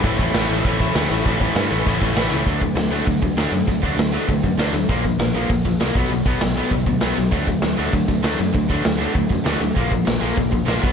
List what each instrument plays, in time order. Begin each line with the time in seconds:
0.04 picked electric bass A1, overdriven electric guitar A2 E3 A3 C#4 E4, kick, crash
0.19 picked electric bass A1, overdriven electric guitar A2 E3 A3 C#4 E4, kick
0.34 picked electric bass A1, overdriven electric guitar A2 E3 A3 C#4 E4, snare, crash
0.50 picked electric bass A1, overdriven electric guitar A2 E3 A3 C#4 E4
0.65 picked electric bass A1, overdriven electric guitar A2 E3 A3 C#4 E4, kick, crash
0.80 overdriven electric guitar A2 E3 A3 C#4 E4, kick
0.95 picked electric bass D2, overdriven electric guitar A2 E3 A3 C#4 E4, snare, crash
1.10 picked electric bass A1, overdriven electric guitar A2 E3 A3 C#4 E4
1.25 picked electric bass A1, overdriven electric guitar A2 E3 A3 C#4 E4, kick, crash
1.41 overdriven electric guitar A2 E3 A3 C#4 E4, kick
1.56 picked electric bass G2, overdriven electric guitar A2 E3 A3 C#4 E4, snare, crash
1.71 picked electric bass A1, overdriven electric guitar A2 E3 A3 C#4 E4
1.86 picked electric bass A1, overdriven electric guitar A2 E3 A3 C#4 E4, kick, crash
2.01 picked electric bass A1, overdriven electric guitar A2 E3 A3 C#4 E4, kick
2.16 picked electric bass A1, overdriven electric guitar A2 E3 A3 C#4 E4, snare, crash
2.31 picked electric bass C#2, overdriven electric guitar A2 E3 A3 C#4 E4
2.46 picked electric bass D2, overdriven electric guitar D3 F#3 A3, distorted electric guitar D4, kick, open hi-hat
2.61 overdriven electric guitar D3 F#3, distorted electric guitar A3, kick, open hi-hat
2.75 picked electric bass D2, overdriven electric guitar D3 F#3, distorted electric guitar A3, snare, open hi-hat
2.91 picked electric bass D2, overdriven electric guitar D3 F#3 A3, distorted electric guitar D4, open hi-hat
3.06 picked electric bass D2, overdriven electric guitar D3 F#3, distorted electric guitar A3, kick, open hi-hat
3.22 picked electric bass D2, overdriven electric guitar D3 F#3, distorted electric guitar A3, kick, open hi-hat
3.36 picked electric bass D2, overdriven electric guitar D3 F#3 A3, distorted electric guitar D4, snare, open hi-hat
3.52 picked electric bass F#2, overdriven electric guitar D3 F#3, distorted electric guitar A3, open hi-hat
3.68 picked electric bass D2, overdriven electric guitar D3 F#3, distorted electric guitar A3, kick, open hi-hat
3.83 picked electric bass D2, overdriven electric guitar D3 F#3 A3, distorted electric guitar D4, kick, open hi-hat
3.97 picked electric bass D2, overdriven electric guitar D3 F#3, distorted electric guitar A3, snare, open hi-hat
4.14 overdriven electric guitar D3 F#3 A3, distorted electric guitar D4, open hi-hat
4.29 picked electric bass D2, overdriven electric guitar D3 F#3, distorted electric guitar A3, kick, open hi-hat
4.43 picked electric bass F#2, overdriven electric guitar D3 F#3, distorted electric guitar A3, kick, open hi-hat
4.58 picked electric bass D2, overdriven electric guitar D3 F#3 A3, distorted electric guitar D4, snare, open hi-hat
4.73 picked electric bass D2, overdriven electric guitar D3 F#3, distorted electric guitar A3, open hi-hat
4.89 picked electric bass A#1, overdriven electric guitar A#2 F3 A#3, kick, open hi-hat
5.04 overdriven electric guitar A#2 F3, kick, open hi-hat
5.19 picked electric bass A#1, overdriven electric guitar A#2 F3, snare, open hi-hat
5.34 picked electric bass A#1, overdriven electric guitar A#2 F3 A#3, open hi-hat
5.50 picked electric bass A#1, overdriven electric guitar A#2 F3, kick, open hi-hat
5.65 picked electric bass A#1, overdriven electric guitar A#2 F3, kick, open hi-hat
5.80 picked electric bass C2, overdriven electric guitar A#2 F3 A#3, snare, open hi-hat
5.95 picked electric bass B1, overdriven electric guitar B2 F#3 B3, kick, open hi-hat
6.10 picked electric bass B1, overdriven electric guitar B2 F#3, open hi-hat
6.25 picked electric bass B1, overdriven electric guitar B2 F#3 B3, kick, open hi-hat
6.41 picked electric bass B1, overdriven electric guitar B2 F#3, snare, open hi-hat
6.56 overdriven electric guitar B2 F#3 B3, open hi-hat
6.70 picked electric bass B1, overdriven electric guitar B2 F#3, kick, open hi-hat
6.86 picked electric bass D2, overdriven electric guitar B2 F#3, kick, open hi-hat
7.01 picked electric bass B1, overdriven electric guitar B2 F#3 B3, snare, open hi-hat
7.16 picked electric bass B1, overdriven electric guitar B2 F#3, open hi-hat
7.32 picked electric bass D2, overdriven electric guitar D3 F#3 A3, distorted electric guitar D4, kick, open hi-hat
7.47 overdriven electric guitar D3 F#3, distorted electric guitar A3, kick, open hi-hat
7.62 picked electric bass D2, overdriven electric guitar D3 F#3, distorted electric guitar A3, snare, open hi-hat
7.77 picked electric bass D2, overdriven electric guitar D3 F#3 A3, distorted electric guitar D4, open hi-hat
7.93 picked electric bass D2, overdriven electric guitar D3 F#3, distorted electric guitar A3, kick, open hi-hat
8.08 picked electric bass D2, overdriven electric guitar D3 F#3, distorted electric guitar A3, kick, open hi-hat
8.23 picked electric bass D2, overdriven electric guitar D3 F#3 A3, distorted electric guitar D4, snare, open hi-hat
8.39 picked electric bass F#2, overdriven electric guitar D3 F#3, distorted electric guitar A3, open hi-hat
8.54 picked electric bass D2, overdriven electric guitar D3 F#3, distorted electric guitar A3, kick, open hi-hat
8.70 picked electric bass D2, overdriven electric guitar D3 F#3 A3, distorted electric guitar D4, kick, open hi-hat
8.84 picked electric bass D2, overdriven electric guitar D3 F#3, distorted electric guitar A3, snare, open hi-hat
8.99 overdriven electric guitar D3 F#3 A3, distorted electric guitar D4, open hi-hat
9.14 picked electric bass D2, overdriven electric guitar D3 F#3, distorted electric guitar A3, kick, open hi-hat
9.29 picked electric bass F#2, overdriven electric guitar D3 F#3, distorted electric guitar A3, kick, open hi-hat
9.45 picked electric bass D2, overdriven electric guitar D3 F#3 A3, distorted electric guitar D4, snare, open hi-hat
9.60 picked electric bass D2, overdriven electric guitar D3 F#3, distorted electric guitar A3, open hi-hat
9.76 picked electric bass A#1, overdriven electric guitar A#2 F3 A#3, kick, open hi-hat
9.91 overdriven electric guitar A#2 F3, kick, open hi-hat
10.07 picked electric bass A#1, overdriven electric guitar A#2 F3, snare, open hi-hat
10.21 picked electric bass A#1, overdriven electric guitar A#2 F3 A#3, open hi-hat
10.37 picked electric bass A#1, overdriven electric guitar A#2 F3, kick, open hi-hat
10.52 picked electric bass A#1, overdriven electric guitar A#2 F3, kick, open hi-hat
10.66 picked electric bass A#1, overdriven electric guitar A#2 F3 A#3, snare, open hi-hat
10.83 picked electric bass B1, overdriven electric guitar B2 F#3 B3, kick, open hi-hat